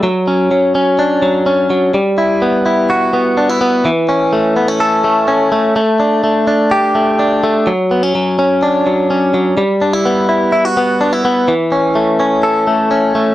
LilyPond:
\new Staff \with { instrumentName = "Clean electric guitar" } { \time 4/4 \key e \dorian \tempo 4 = 126 fis8 cis'8 fis8 cis'8 d'8 fis8 cis'8 fis8 | g8 e'8 b8 e'8 fis'8 b8 d'16 e'16 b8 | e8 cis'8 a8 b16 cis'16 a'8 a8 cis'8 a8 | a8 d'8 a8 d'8 g'8 a8 d'8 a8 |
fis8 b16 cis'16 fis8 cis'8 d'8 fis8 cis'8 fis8 | g8 d'16 e'16 b8 e'8 e'16 fis'16 b8 d'16 e'16 b8 | e8 cis'8 a8 cis'8 a'8 a8 cis'8 a8 | }